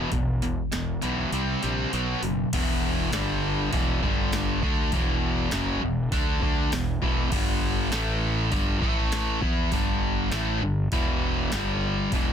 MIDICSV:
0, 0, Header, 1, 4, 480
1, 0, Start_track
1, 0, Key_signature, 1, "minor"
1, 0, Tempo, 600601
1, 96, Time_signature, 4, 2, 24, 8
1, 9853, End_track
2, 0, Start_track
2, 0, Title_t, "Distorted electric guitar"
2, 0, Program_c, 0, 30
2, 0, Note_on_c, 0, 40, 93
2, 0, Note_on_c, 0, 47, 92
2, 0, Note_on_c, 0, 52, 86
2, 84, Note_off_c, 0, 40, 0
2, 85, Note_off_c, 0, 47, 0
2, 86, Note_off_c, 0, 52, 0
2, 101, Note_on_c, 0, 40, 74
2, 105, Note_on_c, 0, 47, 86
2, 315, Note_off_c, 0, 40, 0
2, 317, Note_off_c, 0, 47, 0
2, 340, Note_on_c, 0, 40, 73
2, 344, Note_on_c, 0, 47, 78
2, 555, Note_off_c, 0, 40, 0
2, 557, Note_off_c, 0, 47, 0
2, 576, Note_on_c, 0, 40, 76
2, 583, Note_on_c, 0, 47, 85
2, 793, Note_off_c, 0, 40, 0
2, 797, Note_off_c, 0, 47, 0
2, 812, Note_on_c, 0, 40, 85
2, 819, Note_on_c, 0, 47, 86
2, 821, Note_on_c, 0, 52, 91
2, 1041, Note_off_c, 0, 40, 0
2, 1045, Note_off_c, 0, 47, 0
2, 1046, Note_off_c, 0, 52, 0
2, 1058, Note_on_c, 0, 48, 77
2, 1061, Note_on_c, 0, 55, 96
2, 1064, Note_on_c, 0, 60, 93
2, 1284, Note_off_c, 0, 48, 0
2, 1286, Note_off_c, 0, 55, 0
2, 1288, Note_off_c, 0, 60, 0
2, 1297, Note_on_c, 0, 48, 92
2, 1298, Note_on_c, 0, 55, 90
2, 1304, Note_on_c, 0, 60, 100
2, 1524, Note_off_c, 0, 48, 0
2, 1525, Note_off_c, 0, 55, 0
2, 1527, Note_off_c, 0, 60, 0
2, 1538, Note_on_c, 0, 47, 94
2, 1543, Note_on_c, 0, 54, 84
2, 1547, Note_on_c, 0, 59, 84
2, 1765, Note_off_c, 0, 47, 0
2, 1767, Note_off_c, 0, 54, 0
2, 1769, Note_off_c, 0, 59, 0
2, 1779, Note_on_c, 0, 47, 65
2, 1784, Note_on_c, 0, 54, 73
2, 1995, Note_off_c, 0, 47, 0
2, 1998, Note_off_c, 0, 54, 0
2, 2025, Note_on_c, 0, 40, 105
2, 2028, Note_on_c, 0, 47, 104
2, 2032, Note_on_c, 0, 52, 105
2, 2495, Note_off_c, 0, 40, 0
2, 2497, Note_off_c, 0, 47, 0
2, 2498, Note_off_c, 0, 52, 0
2, 2498, Note_on_c, 0, 43, 98
2, 2504, Note_on_c, 0, 50, 104
2, 2508, Note_on_c, 0, 55, 104
2, 2971, Note_off_c, 0, 43, 0
2, 2974, Note_off_c, 0, 50, 0
2, 2975, Note_on_c, 0, 40, 102
2, 2976, Note_off_c, 0, 55, 0
2, 2983, Note_on_c, 0, 47, 95
2, 2984, Note_on_c, 0, 52, 101
2, 3209, Note_off_c, 0, 40, 0
2, 3214, Note_off_c, 0, 47, 0
2, 3214, Note_off_c, 0, 52, 0
2, 3215, Note_on_c, 0, 43, 94
2, 3219, Note_on_c, 0, 50, 85
2, 3224, Note_on_c, 0, 55, 118
2, 3688, Note_off_c, 0, 50, 0
2, 3689, Note_off_c, 0, 43, 0
2, 3693, Note_off_c, 0, 55, 0
2, 3698, Note_on_c, 0, 50, 87
2, 3705, Note_on_c, 0, 57, 100
2, 3708, Note_on_c, 0, 62, 98
2, 3930, Note_off_c, 0, 50, 0
2, 3933, Note_off_c, 0, 57, 0
2, 3935, Note_off_c, 0, 62, 0
2, 3941, Note_on_c, 0, 40, 104
2, 3946, Note_on_c, 0, 47, 91
2, 3948, Note_on_c, 0, 52, 116
2, 4411, Note_off_c, 0, 40, 0
2, 4413, Note_off_c, 0, 47, 0
2, 4414, Note_off_c, 0, 52, 0
2, 4418, Note_on_c, 0, 42, 88
2, 4421, Note_on_c, 0, 49, 113
2, 4424, Note_on_c, 0, 54, 100
2, 4649, Note_off_c, 0, 42, 0
2, 4651, Note_off_c, 0, 49, 0
2, 4652, Note_off_c, 0, 54, 0
2, 4662, Note_on_c, 0, 40, 73
2, 4662, Note_on_c, 0, 47, 73
2, 4850, Note_off_c, 0, 40, 0
2, 4850, Note_off_c, 0, 47, 0
2, 4891, Note_on_c, 0, 50, 101
2, 4894, Note_on_c, 0, 57, 97
2, 4895, Note_on_c, 0, 62, 103
2, 5123, Note_off_c, 0, 50, 0
2, 5127, Note_off_c, 0, 57, 0
2, 5127, Note_off_c, 0, 62, 0
2, 5133, Note_on_c, 0, 50, 103
2, 5135, Note_on_c, 0, 57, 88
2, 5138, Note_on_c, 0, 62, 103
2, 5366, Note_off_c, 0, 50, 0
2, 5367, Note_off_c, 0, 57, 0
2, 5368, Note_off_c, 0, 62, 0
2, 5374, Note_on_c, 0, 40, 65
2, 5377, Note_on_c, 0, 47, 69
2, 5565, Note_off_c, 0, 40, 0
2, 5567, Note_off_c, 0, 47, 0
2, 5608, Note_on_c, 0, 40, 102
2, 5611, Note_on_c, 0, 47, 97
2, 5613, Note_on_c, 0, 52, 107
2, 5841, Note_off_c, 0, 40, 0
2, 5844, Note_off_c, 0, 47, 0
2, 5844, Note_on_c, 0, 43, 94
2, 5845, Note_off_c, 0, 52, 0
2, 5849, Note_on_c, 0, 55, 102
2, 5850, Note_on_c, 0, 50, 107
2, 6318, Note_off_c, 0, 50, 0
2, 6320, Note_off_c, 0, 43, 0
2, 6321, Note_on_c, 0, 45, 87
2, 6322, Note_off_c, 0, 55, 0
2, 6328, Note_on_c, 0, 52, 94
2, 6331, Note_on_c, 0, 57, 118
2, 6798, Note_off_c, 0, 45, 0
2, 6801, Note_off_c, 0, 52, 0
2, 6801, Note_on_c, 0, 43, 85
2, 6803, Note_off_c, 0, 57, 0
2, 6804, Note_on_c, 0, 55, 117
2, 6806, Note_on_c, 0, 50, 95
2, 7037, Note_off_c, 0, 50, 0
2, 7037, Note_on_c, 0, 45, 96
2, 7038, Note_off_c, 0, 43, 0
2, 7043, Note_off_c, 0, 55, 0
2, 7043, Note_on_c, 0, 52, 98
2, 7047, Note_on_c, 0, 57, 103
2, 7513, Note_off_c, 0, 52, 0
2, 7516, Note_off_c, 0, 45, 0
2, 7521, Note_off_c, 0, 57, 0
2, 7523, Note_on_c, 0, 52, 86
2, 7524, Note_on_c, 0, 59, 108
2, 7531, Note_on_c, 0, 64, 105
2, 7759, Note_off_c, 0, 52, 0
2, 7760, Note_off_c, 0, 59, 0
2, 7763, Note_off_c, 0, 64, 0
2, 7767, Note_on_c, 0, 43, 97
2, 7770, Note_on_c, 0, 55, 101
2, 7771, Note_on_c, 0, 50, 106
2, 8236, Note_off_c, 0, 50, 0
2, 8239, Note_off_c, 0, 55, 0
2, 8240, Note_on_c, 0, 45, 98
2, 8241, Note_off_c, 0, 43, 0
2, 8242, Note_on_c, 0, 52, 91
2, 8248, Note_on_c, 0, 57, 111
2, 8478, Note_off_c, 0, 45, 0
2, 8479, Note_off_c, 0, 52, 0
2, 8482, Note_off_c, 0, 57, 0
2, 8487, Note_on_c, 0, 43, 63
2, 8493, Note_on_c, 0, 50, 71
2, 8681, Note_off_c, 0, 43, 0
2, 8684, Note_off_c, 0, 50, 0
2, 8731, Note_on_c, 0, 40, 87
2, 8733, Note_on_c, 0, 47, 99
2, 8734, Note_on_c, 0, 52, 104
2, 9204, Note_off_c, 0, 40, 0
2, 9205, Note_off_c, 0, 47, 0
2, 9206, Note_off_c, 0, 52, 0
2, 9212, Note_on_c, 0, 43, 82
2, 9213, Note_on_c, 0, 50, 93
2, 9216, Note_on_c, 0, 55, 107
2, 9686, Note_off_c, 0, 43, 0
2, 9686, Note_off_c, 0, 50, 0
2, 9688, Note_off_c, 0, 55, 0
2, 9695, Note_on_c, 0, 40, 86
2, 9697, Note_on_c, 0, 47, 102
2, 9700, Note_on_c, 0, 52, 95
2, 9853, Note_off_c, 0, 40, 0
2, 9853, Note_off_c, 0, 47, 0
2, 9853, Note_off_c, 0, 52, 0
2, 9853, End_track
3, 0, Start_track
3, 0, Title_t, "Fingered electric bass"
3, 0, Program_c, 1, 33
3, 96, Note_on_c, 1, 28, 87
3, 434, Note_off_c, 1, 28, 0
3, 583, Note_on_c, 1, 28, 87
3, 750, Note_off_c, 1, 28, 0
3, 826, Note_on_c, 1, 35, 78
3, 992, Note_off_c, 1, 35, 0
3, 1058, Note_on_c, 1, 36, 85
3, 1227, Note_off_c, 1, 36, 0
3, 1306, Note_on_c, 1, 34, 90
3, 1473, Note_off_c, 1, 34, 0
3, 1543, Note_on_c, 1, 35, 92
3, 1710, Note_off_c, 1, 35, 0
3, 1777, Note_on_c, 1, 30, 82
3, 1947, Note_off_c, 1, 30, 0
3, 2020, Note_on_c, 1, 28, 100
3, 2468, Note_off_c, 1, 28, 0
3, 2495, Note_on_c, 1, 31, 91
3, 2945, Note_off_c, 1, 31, 0
3, 2979, Note_on_c, 1, 28, 86
3, 3202, Note_off_c, 1, 28, 0
3, 3220, Note_on_c, 1, 31, 94
3, 3666, Note_off_c, 1, 31, 0
3, 3695, Note_on_c, 1, 38, 86
3, 3919, Note_off_c, 1, 38, 0
3, 3936, Note_on_c, 1, 28, 85
3, 4384, Note_off_c, 1, 28, 0
3, 4409, Note_on_c, 1, 30, 88
3, 4635, Note_off_c, 1, 30, 0
3, 4656, Note_on_c, 1, 28, 75
3, 4878, Note_off_c, 1, 28, 0
3, 4889, Note_on_c, 1, 38, 98
3, 5114, Note_off_c, 1, 38, 0
3, 5126, Note_on_c, 1, 38, 85
3, 5352, Note_off_c, 1, 38, 0
3, 5374, Note_on_c, 1, 28, 82
3, 5596, Note_off_c, 1, 28, 0
3, 5608, Note_on_c, 1, 28, 104
3, 5833, Note_off_c, 1, 28, 0
3, 5846, Note_on_c, 1, 31, 87
3, 6296, Note_off_c, 1, 31, 0
3, 6330, Note_on_c, 1, 33, 103
3, 6778, Note_off_c, 1, 33, 0
3, 6806, Note_on_c, 1, 31, 83
3, 7031, Note_off_c, 1, 31, 0
3, 7045, Note_on_c, 1, 33, 88
3, 7496, Note_off_c, 1, 33, 0
3, 7527, Note_on_c, 1, 40, 83
3, 7752, Note_off_c, 1, 40, 0
3, 7767, Note_on_c, 1, 31, 88
3, 8217, Note_off_c, 1, 31, 0
3, 8248, Note_on_c, 1, 33, 96
3, 8472, Note_off_c, 1, 33, 0
3, 8486, Note_on_c, 1, 31, 73
3, 8712, Note_off_c, 1, 31, 0
3, 8725, Note_on_c, 1, 28, 84
3, 9177, Note_off_c, 1, 28, 0
3, 9209, Note_on_c, 1, 31, 93
3, 9660, Note_off_c, 1, 31, 0
3, 9687, Note_on_c, 1, 28, 88
3, 9853, Note_off_c, 1, 28, 0
3, 9853, End_track
4, 0, Start_track
4, 0, Title_t, "Drums"
4, 93, Note_on_c, 9, 46, 69
4, 95, Note_on_c, 9, 36, 113
4, 173, Note_off_c, 9, 46, 0
4, 175, Note_off_c, 9, 36, 0
4, 337, Note_on_c, 9, 46, 53
4, 417, Note_off_c, 9, 46, 0
4, 576, Note_on_c, 9, 46, 72
4, 581, Note_on_c, 9, 38, 103
4, 656, Note_off_c, 9, 46, 0
4, 661, Note_off_c, 9, 38, 0
4, 816, Note_on_c, 9, 46, 52
4, 896, Note_off_c, 9, 46, 0
4, 1059, Note_on_c, 9, 46, 78
4, 1139, Note_off_c, 9, 46, 0
4, 1300, Note_on_c, 9, 46, 54
4, 1380, Note_off_c, 9, 46, 0
4, 1542, Note_on_c, 9, 46, 77
4, 1622, Note_off_c, 9, 46, 0
4, 1779, Note_on_c, 9, 46, 65
4, 1859, Note_off_c, 9, 46, 0
4, 2021, Note_on_c, 9, 36, 109
4, 2022, Note_on_c, 9, 46, 64
4, 2022, Note_on_c, 9, 49, 125
4, 2101, Note_off_c, 9, 36, 0
4, 2102, Note_off_c, 9, 46, 0
4, 2102, Note_off_c, 9, 49, 0
4, 2498, Note_on_c, 9, 46, 59
4, 2503, Note_on_c, 9, 38, 108
4, 2578, Note_off_c, 9, 46, 0
4, 2583, Note_off_c, 9, 38, 0
4, 2977, Note_on_c, 9, 46, 57
4, 2979, Note_on_c, 9, 36, 103
4, 3057, Note_off_c, 9, 46, 0
4, 3059, Note_off_c, 9, 36, 0
4, 3220, Note_on_c, 9, 36, 103
4, 3300, Note_off_c, 9, 36, 0
4, 3456, Note_on_c, 9, 46, 62
4, 3461, Note_on_c, 9, 38, 114
4, 3536, Note_off_c, 9, 46, 0
4, 3541, Note_off_c, 9, 38, 0
4, 3696, Note_on_c, 9, 36, 120
4, 3776, Note_off_c, 9, 36, 0
4, 3932, Note_on_c, 9, 46, 64
4, 3934, Note_on_c, 9, 36, 114
4, 4012, Note_off_c, 9, 46, 0
4, 4014, Note_off_c, 9, 36, 0
4, 4407, Note_on_c, 9, 46, 62
4, 4412, Note_on_c, 9, 38, 113
4, 4487, Note_off_c, 9, 46, 0
4, 4492, Note_off_c, 9, 38, 0
4, 4890, Note_on_c, 9, 36, 113
4, 4891, Note_on_c, 9, 46, 62
4, 4970, Note_off_c, 9, 36, 0
4, 4971, Note_off_c, 9, 46, 0
4, 5130, Note_on_c, 9, 36, 111
4, 5210, Note_off_c, 9, 36, 0
4, 5372, Note_on_c, 9, 46, 70
4, 5376, Note_on_c, 9, 38, 125
4, 5451, Note_off_c, 9, 46, 0
4, 5456, Note_off_c, 9, 38, 0
4, 5608, Note_on_c, 9, 36, 119
4, 5688, Note_off_c, 9, 36, 0
4, 5848, Note_on_c, 9, 36, 116
4, 5848, Note_on_c, 9, 49, 112
4, 5928, Note_off_c, 9, 36, 0
4, 5928, Note_off_c, 9, 49, 0
4, 6329, Note_on_c, 9, 46, 64
4, 6333, Note_on_c, 9, 38, 108
4, 6409, Note_off_c, 9, 46, 0
4, 6413, Note_off_c, 9, 38, 0
4, 6807, Note_on_c, 9, 36, 102
4, 6807, Note_on_c, 9, 46, 62
4, 6887, Note_off_c, 9, 36, 0
4, 6887, Note_off_c, 9, 46, 0
4, 7047, Note_on_c, 9, 36, 111
4, 7127, Note_off_c, 9, 36, 0
4, 7288, Note_on_c, 9, 46, 68
4, 7293, Note_on_c, 9, 38, 117
4, 7368, Note_off_c, 9, 46, 0
4, 7373, Note_off_c, 9, 38, 0
4, 7528, Note_on_c, 9, 36, 122
4, 7608, Note_off_c, 9, 36, 0
4, 7766, Note_on_c, 9, 46, 68
4, 7767, Note_on_c, 9, 36, 113
4, 7846, Note_off_c, 9, 46, 0
4, 7847, Note_off_c, 9, 36, 0
4, 8244, Note_on_c, 9, 46, 60
4, 8249, Note_on_c, 9, 38, 108
4, 8324, Note_off_c, 9, 46, 0
4, 8329, Note_off_c, 9, 38, 0
4, 8726, Note_on_c, 9, 36, 106
4, 8726, Note_on_c, 9, 46, 62
4, 8805, Note_off_c, 9, 46, 0
4, 8806, Note_off_c, 9, 36, 0
4, 9205, Note_on_c, 9, 46, 64
4, 9210, Note_on_c, 9, 38, 120
4, 9285, Note_off_c, 9, 46, 0
4, 9290, Note_off_c, 9, 38, 0
4, 9686, Note_on_c, 9, 46, 64
4, 9688, Note_on_c, 9, 36, 105
4, 9766, Note_off_c, 9, 46, 0
4, 9767, Note_off_c, 9, 36, 0
4, 9853, End_track
0, 0, End_of_file